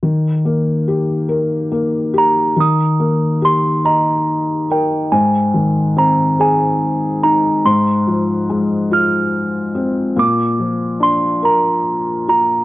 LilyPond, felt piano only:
\new Staff \with { instrumentName = "Felt piano" } { \time 6/8 \key ees \major \tempo 4. = 47 ees8 bes8 g'8 bes'8 bes8 g'8 | ees8 bes8 g'8 ees''4 bes'8 | aes,8 ees8 c'8 aes'4 ees'8 | aes,8 f8 aes8 f'4 c'8 |
bes,8 f8 d'8 bes'4 f'8 | }